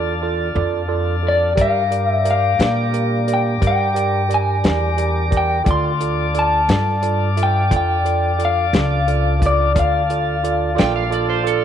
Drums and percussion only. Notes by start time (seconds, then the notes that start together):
1.57 kick, closed hi-hat
1.92 closed hi-hat
2.25 closed hi-hat
2.60 snare, closed hi-hat
2.94 closed hi-hat
3.28 closed hi-hat
3.62 kick, closed hi-hat
3.96 closed hi-hat
4.31 closed hi-hat
4.64 snare, closed hi-hat
4.98 closed hi-hat
5.32 kick, closed hi-hat
5.66 kick, closed hi-hat
6.01 closed hi-hat
6.35 closed hi-hat
6.69 snare, closed hi-hat
7.03 closed hi-hat
7.37 closed hi-hat
7.71 kick, closed hi-hat
8.06 closed hi-hat
8.40 closed hi-hat
8.74 snare, closed hi-hat
9.08 closed hi-hat
9.42 kick, closed hi-hat
9.76 kick, closed hi-hat
10.10 closed hi-hat
10.45 closed hi-hat
10.78 snare, closed hi-hat
11.12 closed hi-hat
11.47 closed hi-hat